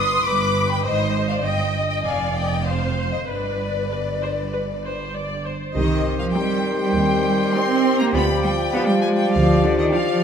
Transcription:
Already playing: G1 G2 B4 C6 D#6
0.24 G1 G2 B5 D6
0.70 G5 B5
0.84 G#1 G#2 C5 D#5
1.29 D5 F5
1.44 G1 G2 D#5 G5
1.88 D#5 G5
2.04 F1 F2 D5 F5 G#5
2.34 D#5 G5
2.64 C5 F5
3.11 C5 D#5
3.26 G1 G2 B4 D5
3.91 B4
4.22 C5
4.53 B4
4.83 C5
5.15 D5
5.46 C5
5.74 C2 D#3 C4 G4 C5 D#5
6.19 F3 F5
6.32 G3 C4 D#4 G4 G5
6.79 G3 G5
6.94 D#2 C4 G4 G5
7.53 C4 D#4 G4 G5 C6
7.98 A#3 A#5
8.13 D2 F3 B3 F4 G4 D5 B5
8.43 G3 G5
8.73 B3 D4 F4 G4 F5 G5 B5
8.86 G3 G5
9.02 G#3 G#5
9.17 G3 G5
9.32 D2 F3 F4 G4 D5 F5
9.64 D3 D5
9.79 D#3 D#5
9.93 F3 D4 F4 G4 D5 F5 G5

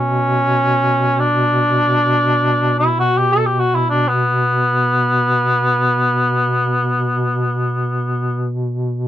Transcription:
Already playing: B2 C#4
1.20 D4
2.79 E4
3.00 F#4
3.18 G4
3.33 A4
3.46 G4
3.60 F#4
3.75 E4
3.90 D4
4.08 B3

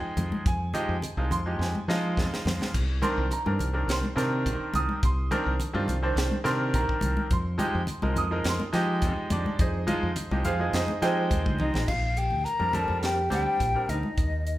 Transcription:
Already playing: F3 G#3 D#4 G#4 G5
0.03 muted fingered electric bass stroke
0.17 F2, closed hi-hat, high conga, low conga
0.32 high conga
0.46 F2 G#5, kick, closed hi-hat
0.74 F3 G#3 D#4 G4, closed hi-hat, low conga
0.89 F2
1.02 D#4 G#4, closed hi-hat, low conga
1.17 C2 F3 G#3 D#4 F4
1.31 F2 C6, closed hi-hat, low conga
1.46 F3 G#3 D#4 G4
1.59 F2 G#5, snare
1.75 high conga
1.88 F3 G#3 D#4 F4, snare
2.17 F2, kick, snare
2.34 snare
2.45 F2, snare, high conga, low conga
2.61 snare, high conga
2.74 C2, kick, closed hi-hat, crash
3.02 D#3 C4 D4 A#4 C6, closed hi-hat, high conga, low conga
3.18 C2
3.30 D4 A#4 A#5, closed hi-hat, low conga
3.46 G2 D#3 C4 D4 A#4, high conga
3.59 C2, closed hi-hat, low conga
3.73 D#3 C4 D4 A#4
3.88 C2 C6, snare, closed hi-hat
4.03 high conga
4.16 C3 D#3 C4 D4 A#4, snare, closed hi-hat
4.46 C2, kick, closed hi-hat
4.60 muted fingered electric bass stroke
4.74 C2 D#6, closed hi-hat, high conga, low conga
4.89 high conga
5.03 C2 C6, kick, closed hi-hat
5.31 D#3 C4 D4 A#4, closed hi-hat, high conga, low conga
5.46 C2
5.59 D4, closed hi-hat, low conga
5.73 G2 D#3 C4 D4 F4, high conga
5.88 C2, closed hi-hat, low conga
6.03 D#3 C4 D4 C5
6.16 C2, snare, closed hi-hat
6.31 high conga
6.44 C3 D#3 C4 D4 A#4 C6, snare, closed hi-hat
6.74 C2 A#5, kick, closed hi-hat
6.89 kick
7.01 C2, closed hi-hat, high conga, low conga
7.17 high conga
7.31 F2 C6, kick, closed hi-hat
7.58 F3 G#3 D#4 G4, closed hi-hat, high conga, low conga
7.75 F2
7.87 D#4 G4, closed hi-hat, low conga
8.02 C2 F3 G#3 D#4 A#4, high conga
8.16 F2 D#6, closed hi-hat, low conga
8.31 F3 G#3 D#4 A#4
8.44 F2, snare, closed hi-hat
8.48 C6
8.60 high conga
8.73 F3 G#3 D#4 G4, snare, closed hi-hat
9.02 F2, kick, closed hi-hat
9.17 muted fingered electric bass stroke
9.30 F2 D4 D5, closed hi-hat, high conga, low conga
9.46 high conga
9.59 F2 D#4 G#4 C5 D#5, kick, closed hi-hat
9.87 F3 G#3 D#4 F4, closed hi-hat, high conga, low conga
10.03 F2
10.15 D#4 F4, closed hi-hat, low conga
10.31 C2 F3 G#3 D#4 G4, high conga
10.44 F2 F4 G#4 C5 F5, closed hi-hat, low conga
10.60 F3 G#3 D#4 G#4
10.73 F2 D#4 G#4 C5 D#5, snare, closed hi-hat
10.88 high conga
11.02 F3 G#3 C4 D#4 G4 G#4 C5 G5, snare, closed hi-hat
11.30 D#2, kick, closed hi-hat, high conga
11.46 D2, kick, high conga
11.58 C2 D#4 D#5, high tom, low conga
11.74 A#1, snare, low conga
11.88 A#1 F4 F5, kick, crash
12.17 G4 G5, closed hi-hat
12.30 D2, low conga
12.45 A#4 A#5, closed hi-hat
12.59 F2 G3 C4 D4 A#4, high conga
12.73 G3 C4 D4 A4 A#4 A5, closed hi-hat, high conga, low conga
12.88 F2, high conga
13.03 G4 G5, snare, closed hi-hat
13.30 D2 G3 C4 D4 G4 G5, snare, closed hi-hat, high conga
13.60 A#1, kick, closed hi-hat
13.74 G3 C4 D4 A#4
13.89 D2 D#4 D#5, closed hi-hat
14.03 D4 F4, high conga
14.18 D#2, kick, closed hi-hat
14.47 closed hi-hat

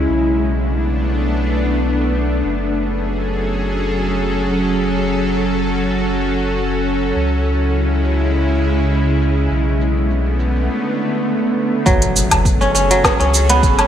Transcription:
Already playing: F#3 F#4
0.10 B1 A3 B3 D4, cabasa
0.26 cabasa
0.39 cabasa
0.55 cabasa
0.69 cabasa
0.98 cabasa
1.28 cabasa
1.57 cabasa
2.16 cabasa
2.32 cabasa
2.45 F#1 F#3 C#4 G#4 A4, cabasa
2.61 cabasa
2.75 cabasa
2.90 cabasa
3.04 cabasa
3.19 cabasa
3.33 cabasa
3.63 cabasa
3.92 cabasa
4.51 cabasa
4.80 F#4, cabasa
5.10 cabasa
5.69 cabasa
5.99 cabasa
6.28 cabasa
6.57 cabasa
6.86 cabasa
7.03 cabasa
7.16 C#2 C#3 G#3 E4, cabasa
7.32 cabasa
7.45 cabasa
7.61 cabasa
7.75 cabasa
7.90 cabasa
8.04 cabasa
8.20 cabasa
8.34 cabasa
8.50 cabasa
8.63 cabasa
8.79 cabasa
8.93 cabasa
9.09 cabasa
9.22 cabasa
9.38 cabasa
9.51 B1 D3 A3 B3, cabasa
9.68 cabasa
9.81 cabasa
9.97 cabasa
10.10 cabasa
10.26 cabasa
10.39 cabasa
10.56 cabasa
11.86 F#1 F#3 C#4 G#4 A4, kick, impact, cabasa
12.02 closed hi-hat, cabasa
12.16 cabasa
12.31 F#1, closed hi-hat, udu, cabasa, low woodblock
12.45 kick, cabasa
12.61 C#4, cabasa
12.74 F#1 C#4, cabasa
12.91 F#3, closed hi-hat, cabasa
13.04 kick, snare, cabasa, low woodblock
13.20 C#2 C#4, closed hi-hat, cabasa
13.34 cabasa
13.49 B3, closed hi-hat, cabasa
13.63 F#1, kick, cabasa
13.79 C#4, closed hi-hat, cabasa, low woodblock

